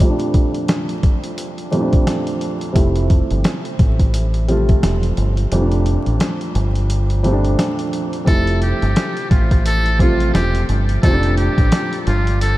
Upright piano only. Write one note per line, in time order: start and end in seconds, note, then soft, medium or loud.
0.00 1.07 F2 medium
0.00 1.07 A#2 medium
0.00 1.07 F3 medium
0.00 1.08 G3 medium
0.00 1.08 A3 medium
0.00 0.09 C4 medium
0.10 1.11 D4 medium
1.71 2.53 F2 medium
1.71 2.54 A#2 medium
1.71 2.54 F3 medium
1.71 2.54 G3 medium
1.71 2.54 A3 medium
1.71 1.81 C4 medium
1.81 2.58 D4 medium
2.73 3.81 C3 medium
2.73 3.81 F3 medium
2.73 3.81 G3 medium
2.73 3.82 A3 medium
2.73 3.82 E4 medium
4.48 5.29 C3 medium
4.48 5.30 F3 medium
4.48 5.30 G3 medium
4.48 5.31 A3 medium
4.48 5.31 F4 medium
5.52 6.58 F2 medium
5.52 6.59 A#2 medium
5.52 6.59 F3 medium
5.52 6.59 G3 medium
5.52 6.60 A3 medium
5.52 5.61 C4 medium
5.62 6.63 D4 medium
7.23 8.05 F2 medium
7.23 8.05 A#2 medium
7.23 8.06 F3 medium
7.23 8.06 G3 medium
7.23 8.06 A3 medium
7.23 7.33 C4 medium
7.33 8.10 D4 medium
8.24 9.33 C3 medium
8.24 9.33 F3 medium
8.24 9.33 G3 medium
8.24 9.34 A3 medium
8.24 9.34 E4 medium
10.00 10.81 C3 medium
10.00 10.81 F3 medium
10.00 10.82 G3 medium
10.00 10.82 A3 medium
10.00 10.83 F4 medium
11.04 12.10 F2 medium
11.04 12.10 A#2 medium
11.04 12.11 F3 medium
11.04 12.11 G3 medium
11.04 12.11 A3 medium
11.04 11.13 C4 medium
11.13 12.15 D4 medium